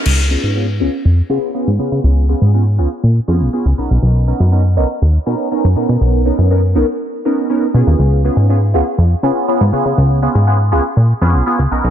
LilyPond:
<<
  \new Staff \with { instrumentName = "Analog polysynth" } { \time 4/4 \key des \mixolydian \tempo 4 = 121 r8 <ces' des' f' aes'>8 <ces' des' f' aes'>8 <ces' des' f' aes'>8 r8 <ces' des' f' aes'>8 <ces' des' f' aes'>8 <ces' des' f' aes'>8~ | <ces' des' f' aes'>8 <ces' des' f' aes'>8 <ces' des' f' aes'>8 <ces' des' f' aes'>8 r8 <ces' des' f' aes'>8 <ces' des' f' aes'>8 <ces' des' ees' bes'>8~ | <ces' des' ees' bes'>8 <ces' des' ees' bes'>8 <ces' des' ees' bes'>8 <ces' des' ees' bes'>8 r8 <ces' des' ees' bes'>8 <ces' des' ees' bes'>8 <ces' des' ees' bes'>8~ | <ces' des' ees' bes'>8 <ces' des' ees' bes'>8 <ces' des' ees' bes'>8 <ces' des' ees' bes'>8 r8 <ces' des' ees' bes'>8 <ces' des' ees' bes'>8 <ces' des' f' aes'>8~ |
<ces' des' f' aes'>8 <ces' des' f' aes'>8 <ces' des' f' aes'>8 <ces' des' f' aes'>8 r8 <ces' des' f' aes'>8 <ces' des' f' aes'>8 <ces' des' f' aes'>8~ | <ces' des' f' aes'>8 <ces' des' f' aes'>8 <ces' des' f' aes'>8 <ces' des' f' aes'>8 r8 <ces' des' f' aes'>8 <ces' des' f' aes'>8 <ces' des' ees' bes'>8 | }
  \new Staff \with { instrumentName = "Analog synth bass" } { \clef bass \time 4/4 \key des \mixolydian des,8 r16 aes,8. des,16 r16 f,16 r16 des16 r8 aes,16 des16 des16 | des,8 r16 aes,8. des,16 r16 bes,16 r16 f,16 ces,16 r16 des,16 r16 ces,16 | ces,8 r16 ges,8. ces,16 r16 ees,16 r16 ces16 r8 ges,16 ces16 ces16 | ces,8 r16 ges,8. ces,16 r4. r16 ces16 ees,16 |
des,8 r16 aes,8. des,16 r16 f,16 r16 des16 r8 aes,16 des16 des16 | des,8 r16 aes,8. des,16 r16 bes,16 r16 f,16 ces,16 r16 des,16 ces,16 ces,16 | }
  \new DrumStaff \with { instrumentName = "Drums" } \drummode { \time 4/4 cymc4 r4 r4 r4 | r4 r4 r4 r4 | r4 r4 r4 r4 | r4 r4 r4 r4 |
r4 r4 r4 r4 | r4 r4 r4 r4 | }
>>